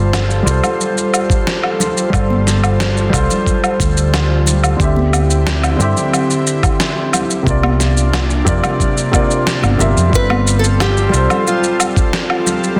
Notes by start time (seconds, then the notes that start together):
Already playing: G1 G3 F4 A4 C5
0.13 snare, low woodblock, shaker
0.30 shaker
0.43 C2 G3 F4
0.47 A4 C5, shaker
0.64 low conga, low woodblock, shaker
0.81 shaker
0.97 shaker
1.14 low woodblock, shaker
1.30 kick, shaker
1.47 snare, shaker
1.63 low woodblock
1.80 low conga, shaker
1.97 shaker
2.10 G1 G3 F4, kick
2.14 A4 C5, low woodblock, shaker
2.30 high conga
2.47 snare, shaker
2.64 low woodblock, shaker
2.80 snare, shaker
2.97 shaker
3.09 C2 G3 F4, kick
3.13 A4 C5, low woodblock, shaker
3.30 low conga, shaker
3.46 kick, shaker
3.64 low woodblock, shaker
3.80 D2, kick, shaker
3.97 shaker
4.14 snare, low woodblock, shaker
4.46 low conga, shaker
4.64 low woodblock, shaker
4.76 D2 D3 C4 E4 G4, kick
4.80 C4 G4 E5, shaker
4.96 high conga
5.13 low woodblock, shaker
5.30 shaker
5.47 snare, shaker
5.63 low woodblock, shaker
5.76 G2 D3 C4, shaker
5.81 G4 E5
5.97 low conga, shaker
6.13 low woodblock, shaker
6.30 shaker
6.47 shaker
6.63 kick, low woodblock, shaker
6.80 snare, shaker
7.13 low conga, low woodblock, shaker
7.30 shaker
7.43 C2 C3 A#3 D4 F4, kick
7.47 F4 D5, shaker
7.63 high conga, low woodblock
7.80 snare, shaker
7.97 shaker
8.13 snare, low woodblock, shaker
8.30 shaker
8.45 F2 C3 A#3 F4 D5, kick, shaker
8.64 low conga, low woodblock, shaker
8.80 kick, shaker
8.97 shaker
9.12 C3 A#3 F4 D5, kick, low woodblock, shaker
9.31 shaker
9.47 snare, shaker
9.63 G1, high conga, low woodblock, shaker
9.78 G1 C3 A#3 F4 E5, low conga, shaker
9.96 F2, shaker
10.09 G1 G3 C4 F4 A4, kick
10.14 C4 A4 B4, shaker
10.30 high conga, low woodblock
10.47 shaker
10.59 A4
10.64 shaker
10.80 G4, snare, low woodblock, shaker
10.97 shaker
11.09 C2 G3 F4
11.14 A4 C5, shaker
11.30 low conga, low woodblock, shaker
11.47 F4, shaker
11.64 shaker
11.80 low woodblock, shaker
11.96 kick, shaker
12.13 snare, shaker
12.30 low woodblock
12.46 low conga, shaker
12.64 shaker
12.76 G3